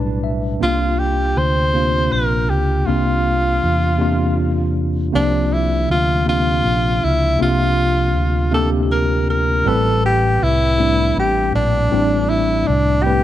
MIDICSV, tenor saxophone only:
0, 0, Header, 1, 2, 480
1, 0, Start_track
1, 0, Tempo, 754717
1, 380, Time_signature, 6, 3, 24, 8
1, 8418, End_track
2, 0, Start_track
2, 0, Title_t, "Tenor saxophone"
2, 0, Program_c, 0, 66
2, 0, Note_on_c, 0, 62, 79
2, 122, Note_off_c, 0, 62, 0
2, 400, Note_on_c, 0, 65, 78
2, 628, Note_on_c, 0, 67, 78
2, 638, Note_off_c, 0, 65, 0
2, 877, Note_on_c, 0, 72, 98
2, 887, Note_off_c, 0, 67, 0
2, 1349, Note_on_c, 0, 70, 78
2, 1359, Note_off_c, 0, 72, 0
2, 1587, Note_on_c, 0, 67, 73
2, 1596, Note_off_c, 0, 70, 0
2, 1819, Note_on_c, 0, 65, 79
2, 1828, Note_off_c, 0, 67, 0
2, 3019, Note_off_c, 0, 65, 0
2, 3277, Note_on_c, 0, 62, 86
2, 3518, Note_on_c, 0, 64, 78
2, 3528, Note_off_c, 0, 62, 0
2, 3749, Note_off_c, 0, 64, 0
2, 3759, Note_on_c, 0, 65, 92
2, 3973, Note_off_c, 0, 65, 0
2, 4000, Note_on_c, 0, 65, 92
2, 4477, Note_on_c, 0, 64, 81
2, 4486, Note_off_c, 0, 65, 0
2, 4708, Note_off_c, 0, 64, 0
2, 4720, Note_on_c, 0, 65, 93
2, 5404, Note_off_c, 0, 65, 0
2, 5433, Note_on_c, 0, 69, 72
2, 5534, Note_off_c, 0, 69, 0
2, 5673, Note_on_c, 0, 70, 70
2, 5890, Note_off_c, 0, 70, 0
2, 5918, Note_on_c, 0, 70, 78
2, 6155, Note_on_c, 0, 69, 97
2, 6164, Note_off_c, 0, 70, 0
2, 6387, Note_off_c, 0, 69, 0
2, 6397, Note_on_c, 0, 67, 83
2, 6633, Note_on_c, 0, 64, 93
2, 6642, Note_off_c, 0, 67, 0
2, 7106, Note_off_c, 0, 64, 0
2, 7118, Note_on_c, 0, 67, 81
2, 7333, Note_off_c, 0, 67, 0
2, 7346, Note_on_c, 0, 62, 85
2, 7819, Note_on_c, 0, 64, 76
2, 7829, Note_off_c, 0, 62, 0
2, 8060, Note_on_c, 0, 62, 87
2, 8069, Note_off_c, 0, 64, 0
2, 8288, Note_on_c, 0, 67, 87
2, 8297, Note_off_c, 0, 62, 0
2, 8418, Note_off_c, 0, 67, 0
2, 8418, End_track
0, 0, End_of_file